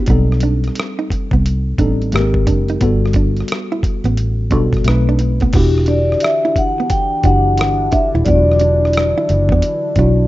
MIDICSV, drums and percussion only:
0, 0, Header, 1, 2, 480
1, 0, Start_track
1, 0, Key_signature, 1, "minor"
1, 0, Tempo, 681818
1, 56, Time_signature, 4, 2, 24, 8
1, 7234, End_track
2, 0, Start_track
2, 0, Title_t, "Drums"
2, 45, Note_on_c, 9, 42, 70
2, 54, Note_on_c, 9, 36, 106
2, 116, Note_off_c, 9, 42, 0
2, 125, Note_off_c, 9, 36, 0
2, 227, Note_on_c, 9, 37, 30
2, 285, Note_on_c, 9, 42, 72
2, 297, Note_off_c, 9, 37, 0
2, 355, Note_off_c, 9, 42, 0
2, 449, Note_on_c, 9, 42, 34
2, 476, Note_on_c, 9, 37, 33
2, 519, Note_off_c, 9, 42, 0
2, 531, Note_on_c, 9, 42, 78
2, 546, Note_off_c, 9, 37, 0
2, 560, Note_on_c, 9, 37, 99
2, 602, Note_off_c, 9, 42, 0
2, 630, Note_off_c, 9, 37, 0
2, 777, Note_on_c, 9, 36, 75
2, 786, Note_on_c, 9, 42, 63
2, 848, Note_off_c, 9, 36, 0
2, 856, Note_off_c, 9, 42, 0
2, 924, Note_on_c, 9, 36, 92
2, 995, Note_off_c, 9, 36, 0
2, 1026, Note_on_c, 9, 42, 79
2, 1096, Note_off_c, 9, 42, 0
2, 1256, Note_on_c, 9, 36, 83
2, 1257, Note_on_c, 9, 42, 59
2, 1326, Note_off_c, 9, 36, 0
2, 1327, Note_off_c, 9, 42, 0
2, 1420, Note_on_c, 9, 42, 33
2, 1490, Note_off_c, 9, 42, 0
2, 1494, Note_on_c, 9, 42, 73
2, 1518, Note_on_c, 9, 37, 108
2, 1564, Note_off_c, 9, 42, 0
2, 1589, Note_off_c, 9, 37, 0
2, 1648, Note_on_c, 9, 36, 88
2, 1718, Note_off_c, 9, 36, 0
2, 1738, Note_on_c, 9, 42, 75
2, 1741, Note_on_c, 9, 36, 94
2, 1809, Note_off_c, 9, 42, 0
2, 1811, Note_off_c, 9, 36, 0
2, 1890, Note_on_c, 9, 42, 34
2, 1960, Note_off_c, 9, 42, 0
2, 1976, Note_on_c, 9, 42, 68
2, 1979, Note_on_c, 9, 36, 108
2, 2046, Note_off_c, 9, 42, 0
2, 2049, Note_off_c, 9, 36, 0
2, 2151, Note_on_c, 9, 37, 32
2, 2206, Note_on_c, 9, 42, 73
2, 2212, Note_on_c, 9, 36, 84
2, 2222, Note_off_c, 9, 37, 0
2, 2276, Note_off_c, 9, 42, 0
2, 2283, Note_off_c, 9, 36, 0
2, 2369, Note_on_c, 9, 42, 33
2, 2397, Note_on_c, 9, 37, 36
2, 2440, Note_off_c, 9, 42, 0
2, 2450, Note_on_c, 9, 42, 84
2, 2467, Note_off_c, 9, 37, 0
2, 2479, Note_on_c, 9, 37, 107
2, 2521, Note_off_c, 9, 42, 0
2, 2549, Note_off_c, 9, 37, 0
2, 2697, Note_on_c, 9, 36, 80
2, 2704, Note_on_c, 9, 42, 61
2, 2767, Note_off_c, 9, 36, 0
2, 2774, Note_off_c, 9, 42, 0
2, 2845, Note_on_c, 9, 42, 33
2, 2915, Note_off_c, 9, 42, 0
2, 2938, Note_on_c, 9, 42, 78
2, 3009, Note_off_c, 9, 42, 0
2, 3173, Note_on_c, 9, 42, 54
2, 3174, Note_on_c, 9, 36, 82
2, 3243, Note_off_c, 9, 42, 0
2, 3245, Note_off_c, 9, 36, 0
2, 3328, Note_on_c, 9, 36, 85
2, 3336, Note_on_c, 9, 42, 33
2, 3356, Note_on_c, 9, 37, 29
2, 3398, Note_off_c, 9, 36, 0
2, 3406, Note_off_c, 9, 42, 0
2, 3410, Note_on_c, 9, 42, 71
2, 3427, Note_off_c, 9, 37, 0
2, 3434, Note_on_c, 9, 37, 100
2, 3480, Note_off_c, 9, 42, 0
2, 3505, Note_off_c, 9, 37, 0
2, 3652, Note_on_c, 9, 42, 68
2, 3723, Note_off_c, 9, 42, 0
2, 3803, Note_on_c, 9, 42, 34
2, 3809, Note_on_c, 9, 36, 86
2, 3873, Note_off_c, 9, 42, 0
2, 3879, Note_off_c, 9, 36, 0
2, 3891, Note_on_c, 9, 42, 73
2, 3896, Note_on_c, 9, 49, 86
2, 3897, Note_on_c, 9, 36, 112
2, 3962, Note_off_c, 9, 42, 0
2, 3967, Note_off_c, 9, 36, 0
2, 3967, Note_off_c, 9, 49, 0
2, 4068, Note_on_c, 9, 37, 33
2, 4126, Note_on_c, 9, 42, 68
2, 4138, Note_off_c, 9, 37, 0
2, 4197, Note_off_c, 9, 42, 0
2, 4309, Note_on_c, 9, 37, 35
2, 4367, Note_on_c, 9, 42, 85
2, 4380, Note_off_c, 9, 37, 0
2, 4396, Note_on_c, 9, 37, 97
2, 4438, Note_off_c, 9, 42, 0
2, 4467, Note_off_c, 9, 37, 0
2, 4617, Note_on_c, 9, 36, 81
2, 4620, Note_on_c, 9, 42, 62
2, 4687, Note_off_c, 9, 36, 0
2, 4691, Note_off_c, 9, 42, 0
2, 4855, Note_on_c, 9, 42, 81
2, 4858, Note_on_c, 9, 36, 87
2, 4926, Note_off_c, 9, 42, 0
2, 4928, Note_off_c, 9, 36, 0
2, 5093, Note_on_c, 9, 42, 57
2, 5095, Note_on_c, 9, 36, 82
2, 5163, Note_off_c, 9, 42, 0
2, 5165, Note_off_c, 9, 36, 0
2, 5333, Note_on_c, 9, 42, 71
2, 5357, Note_on_c, 9, 37, 110
2, 5403, Note_off_c, 9, 42, 0
2, 5428, Note_off_c, 9, 37, 0
2, 5574, Note_on_c, 9, 42, 72
2, 5580, Note_on_c, 9, 36, 94
2, 5645, Note_off_c, 9, 42, 0
2, 5651, Note_off_c, 9, 36, 0
2, 5812, Note_on_c, 9, 42, 71
2, 5818, Note_on_c, 9, 36, 102
2, 5882, Note_off_c, 9, 42, 0
2, 5888, Note_off_c, 9, 36, 0
2, 5995, Note_on_c, 9, 37, 31
2, 6051, Note_on_c, 9, 42, 72
2, 6065, Note_off_c, 9, 37, 0
2, 6121, Note_off_c, 9, 42, 0
2, 6232, Note_on_c, 9, 37, 37
2, 6289, Note_on_c, 9, 42, 87
2, 6302, Note_off_c, 9, 37, 0
2, 6318, Note_on_c, 9, 37, 106
2, 6360, Note_off_c, 9, 42, 0
2, 6388, Note_off_c, 9, 37, 0
2, 6540, Note_on_c, 9, 42, 63
2, 6611, Note_off_c, 9, 42, 0
2, 6681, Note_on_c, 9, 36, 91
2, 6751, Note_off_c, 9, 36, 0
2, 6775, Note_on_c, 9, 42, 83
2, 6845, Note_off_c, 9, 42, 0
2, 7009, Note_on_c, 9, 42, 56
2, 7011, Note_on_c, 9, 36, 83
2, 7080, Note_off_c, 9, 42, 0
2, 7082, Note_off_c, 9, 36, 0
2, 7234, End_track
0, 0, End_of_file